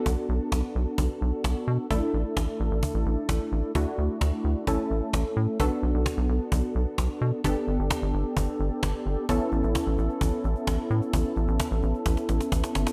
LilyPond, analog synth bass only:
\new Staff \with { instrumentName = "Analog synth bass" } { \clef bass \time 4/4 \key a \mixolydian \tempo 4 = 130 b,,16 r16 b,,16 r16 b,,16 r16 b,,16 r16 b,,16 r16 b,,16 r16 b,,16 r16 b,16 r16 | a,,16 r16 a,,16 r16 a,,16 r16 a,,16 a,,16 r16 a,,16 a,,16 r16 a,,16 r16 a,,16 r16 | d,16 r16 d,16 r16 d,16 r16 d,16 r16 a,,16 r16 a,,16 r16 a,,16 r16 a,16 r16 | b,,16 r16 b,,16 b,,16 r16 b,,16 b,,16 r16 b,,16 r16 b,,16 r16 b,,16 r16 b,16 r16 |
g,,16 r16 g,,16 g,,16 r16 g,,16 g,,16 r16 g,,16 r16 g,,16 r16 g,,16 r16 g,,16 r16 | a,,16 r16 a,,16 a,,16 r16 a,,16 a,,16 r16 a,,16 r16 a,,16 r16 a,,16 r16 a,16 r16 | a,,16 r16 a,,16 a,,16 r16 a,,16 a,,16 r16 a,,16 r16 a,,16 r16 a,,16 r16 g,,16 r16 | }